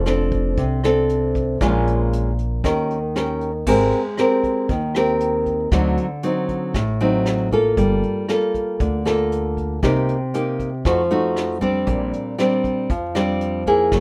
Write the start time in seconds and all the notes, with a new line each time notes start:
Already playing: F1 F3
0.06 C4 D4 A4, cross-stick, closed hi-hat
0.32 kick, closed hi-hat
0.57 C2 C3, kick, closed hi-hat
0.84 C4 D4 A4, cross-stick, closed hi-hat
1.09 closed hi-hat
1.35 kick, closed hi-hat
1.61 A#1 A#2 G#3 C#4 F4, kick, cross-stick, closed hi-hat
1.87 closed hi-hat
2.13 closed hi-hat
2.39 closed hi-hat
2.64 D#2 D#3 C#4 G4 A#4, kick, cross-stick, closed hi-hat
2.90 closed hi-hat
3.16 C#4 G4 A#4, cross-stick, closed hi-hat
3.41 closed hi-hat
3.66 G#1 G#3 C4 G4 A#4, kick, crash
3.92 closed hi-hat
4.17 C4 G4 A#4, cross-stick, closed hi-hat
4.44 kick, closed hi-hat
4.69 D#2 D#3, kick, closed hi-hat
4.95 C4 G4 A#4, cross-stick, closed hi-hat
5.20 closed hi-hat
5.46 kick, closed hi-hat
5.71 D2 D3 F#3 C4 D#4, kick, cross-stick, closed hi-hat
5.97 closed hi-hat
6.23 F#3 C4 D#4, closed hi-hat
6.49 kick, closed hi-hat
6.74 A1 A2, kick, cross-stick, closed hi-hat
7.00 F#3 C4 D#4, closed hi-hat
7.26 cross-stick, closed hi-hat
7.52 A#3 F4 A4, kick, closed hi-hat
7.77 G1 G3, kick, closed hi-hat
8.03 closed hi-hat
8.29 A#3 F4 A4, cross-stick, closed hi-hat
8.54 kick, closed hi-hat
8.80 D2 D3, kick, closed hi-hat
9.05 A#3 F4 A4, cross-stick, closed hi-hat
9.32 closed hi-hat
9.57 kick, closed hi-hat
9.83 C2 C3 A#3 D#4 G4, kick, cross-stick, closed hi-hat
10.08 closed hi-hat
10.34 A#3 D#4 G4, closed hi-hat
10.60 kick, closed hi-hat
10.85 F2 F3 A3 D#4 F#4, kick, cross-stick, closed hi-hat
11.11 A3 D#4 F#4, closed hi-hat
11.36 cross-stick, closed hi-hat
11.61 G3 C4 D4, kick, closed hi-hat
11.87 A#1 A#2, kick, closed hi-hat
12.13 closed hi-hat
12.38 G3 C4 D4, cross-stick, closed hi-hat
12.64 kick, closed hi-hat
12.90 F2 F3, kick, closed hi-hat
13.15 G3 C4 D4, cross-stick, closed hi-hat
13.41 closed hi-hat
13.67 A#3 E4 G#4, kick, closed hi-hat
13.92 F#1 F#3, kick, cross-stick, closed hi-hat